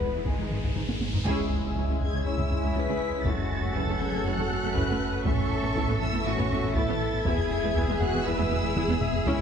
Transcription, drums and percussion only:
0.01 taiko medium
0.26 taiko medium
0.38 taiko mid soft
0.50 taiko mid medium
0.63 taiko medium
0.76 taiko low-mid loud
0.89 taiko high loud
1.01 taiko high loud
1.14 taiko low loud
1.26 taiko loud
1.39 taiko low medium
1.51 taiko low medium
1.76 taiko medium
2.01 taiko low medium
2.39 taiko low medium
2.51 taiko low medium
2.75 taiko medium
3.26 taiko loud
3.38 taiko low medium
3.51 taiko low medium
3.75 taiko medium
4.01 taiko low medium
4.38 taiko low medium
4.50 taiko low medium
4.75 taiko medium
5.26 taiko loud
5.39 taiko low medium
5.51 taiko low medium
5.76 taiko medium
6.01 taiko low medium
6.14 taiko rim soft
6.38 taiko low medium
6.51 taiko low medium
6.75 taiko medium
7.26 taiko loud
7.38 taiko low medium
7.51 taiko low medium
7.76 taiko medium
8.01 taiko low medium
8.39 taiko low medium
8.52 taiko low medium
8.76 taiko mid loud
8.88 taiko high loud
9.01 taiko low-mid loud
9.13 taiko low loud
9.26 taiko loud

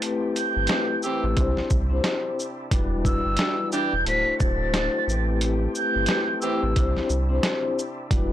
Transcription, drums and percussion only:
0.02 closed hi-hat loud
0.36 closed hi-hat medium
0.36 shaker medium
0.67 snare loud
0.67 closed hi-hat medium
1.03 shaker medium
1.37 kick medium
1.37 closed hi-hat medium
1.57 snare soft
1.70 kick loud
1.70 shaker medium
2.04 snare loud
2.04 closed hi-hat medium
2.39 shaker medium
2.71 kick loud
2.71 closed hi-hat loud
3.05 kick medium
3.05 shaker medium
3.37 snare loud
3.37 closed hi-hat medium
3.72 shaker medium
4.06 closed hi-hat medium
4.40 kick loud
4.40 shaker medium
4.74 snare loud
4.74 closed hi-hat medium
5.09 shaker medium
5.41 closed hi-hat loud
5.75 shaker medium
6.06 snare loud
6.06 closed hi-hat medium
6.42 shaker medium
6.76 kick medium
6.76 closed hi-hat medium
6.97 snare soft
7.10 shaker medium
7.43 snare loud
7.43 closed hi-hat medium
7.79 shaker medium
8.11 kick loud
8.11 closed hi-hat loud

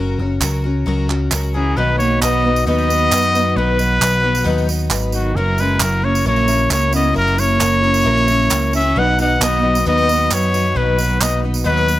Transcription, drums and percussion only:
0.41 clap medium
0.41 tambourine loud
1.10 clap medium
1.32 clap loud
1.32 tambourine loud
2.00 tambourine medium
2.22 clap medium
2.22 tambourine loud
2.33 tambourine soft
2.56 tambourine medium
2.67 tambourine soft
2.79 tambourine soft
2.90 tambourine medium
3.12 clap medium
3.12 tambourine loud
3.24 tambourine soft
3.35 tambourine medium
3.79 tambourine medium
4.02 clap loud
4.02 tambourine loud
4.13 tambourine soft
4.35 tambourine medium
4.46 tambourine soft
4.58 tambourine soft
4.69 tambourine medium
4.91 clap loud
4.91 tambourine medium
5.02 tambourine soft
5.12 tambourine medium
5.58 tambourine medium
5.80 clap loud
5.80 tambourine loud
6.15 tambourine medium
6.26 tambourine soft
6.36 tambourine soft
6.48 tambourine medium
6.70 clap medium
6.70 tambourine loud
6.81 tambourine soft
6.93 tambourine medium
7.16 tambourine soft
7.27 tambourine soft
7.38 tambourine medium
7.61 clap medium
7.61 tambourine loud
7.84 tambourine soft
7.94 tambourine medium
8.17 tambourine soft
8.28 tambourine medium
8.39 tambourine soft
8.50 clap loud
8.50 tambourine medium
8.73 tambourine medium
9.19 tambourine medium
9.41 clap loud
9.41 tambourine loud
9.52 tambourine soft
9.75 tambourine medium
9.87 tambourine soft
9.98 tambourine soft
10.09 tambourine medium
10.31 clap loud
10.31 tambourine loud
10.43 tambourine soft
10.54 tambourine medium
10.98 tambourine medium
11.21 clap loud
11.21 tambourine loud
11.54 tambourine medium
11.66 tambourine soft
11.77 tambourine soft
11.88 tambourine medium

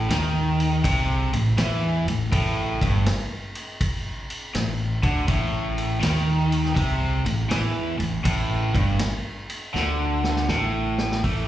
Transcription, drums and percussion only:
0.10 snare loud
0.10 ride medium
0.60 ride medium
0.84 kick loud
0.84 ride medium
1.33 ride medium
1.58 snare loud
1.58 ride medium
2.08 ride medium
2.32 kick loud
2.32 ride loud
2.82 kick loud
2.82 ride medium
3.06 snare loud
3.06 ride medium
3.55 ride medium
3.81 kick loud
3.81 ride medium
4.30 ride medium
4.55 snare loud
4.55 ride medium
5.03 kick loud
5.03 ride medium
5.28 kick loud
5.28 ride medium
5.78 ride medium
6.03 snare loud
6.03 ride loud
6.52 ride medium
6.65 snare soft
6.77 kick loud
6.77 ride medium
7.26 ride medium
7.51 snare loud
7.51 ride medium
8.00 ride medium
8.25 kick loud
8.25 ride loud
8.75 kick loud
8.75 ride medium
8.99 snare loud
8.99 ride loud
9.50 ride medium
9.75 snare medium
10.24 snare medium
10.36 snare medium
10.48 snare medium
10.98 snare medium
11.12 snare medium
11.24 kick loud
11.24 open hi-hat medium

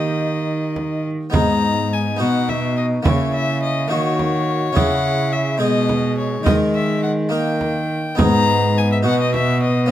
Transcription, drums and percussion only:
0.76 frame drum soft
1.34 frame drum medium
2.49 frame drum soft
3.05 frame drum medium
4.19 frame drum soft
4.77 frame drum medium
5.89 frame drum medium
6.46 frame drum medium
7.61 frame drum soft
8.19 frame drum medium
9.34 frame drum soft

